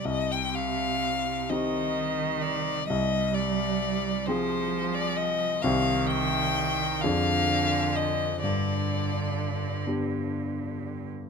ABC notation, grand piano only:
X:1
M:6/8
L:1/8
Q:3/8=43
K:Cm
V:1 name="Grand piano"
C,,3 [CEG]3 | C,,3 [CFA]3 | [C,,CEG]3 [F,,DA]3 | G,,3 [=B,DG]3 |]